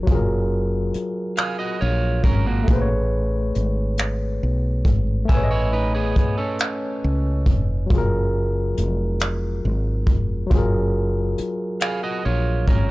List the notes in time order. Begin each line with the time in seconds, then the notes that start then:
Already playing: A#4
0.03 F#3 F4
0.07 F#1 G#4, kick, closed hi-hat
0.15 A#4
0.94 muted fretless electric bass stroke, closed hi-hat
1.37 G#4 F5, finger snap, closed hi-hat
1.59 F#4 D#5
1.81 A#1 F4 C#5
2.24 G#1 C#4 A#4, kick, closed hi-hat
2.46 A#3 F#4
2.64 A3 G#4
2.68 A1 B4, kick, closed hi-hat
2.75 C5
2.82 C#5
3.55 G#1, closed hi-hat
3.98 finger snap, closed hi-hat
4.43 B1
4.85 G#1, kick, closed hi-hat
5.25 A3 G#5, closed hi-hat
5.29 A1 G#4 B4 E5, kick
5.37 C#5
5.44 D#5
5.51 E4 C#5
5.73 D#4 B4
5.95 B3 G#4
6.16 muted fretless electric bass stroke, kick, closed hi-hat
6.38 C#4 A4
6.59 finger snap, closed hi-hat
7.04 C#2
7.46 F1, kick, closed hi-hat
7.86 F#3 F4, closed hi-hat
7.90 F#1 G#4, kick
7.98 A#4
8.77 F1, closed hi-hat
9.20 finger snap, closed hi-hat
9.65 G#1
10.07 F1, kick, closed hi-hat
10.47 F#3 F4
10.51 F#1 G#4, kick, closed hi-hat
10.58 A#4
11.38 muted fretless electric bass stroke, closed hi-hat
11.80 G#4 F5, finger snap, closed hi-hat
12.03 F#4 D#5
12.25 A#1 F4 C#5
12.68 G#1 C#4 A#4, kick, closed hi-hat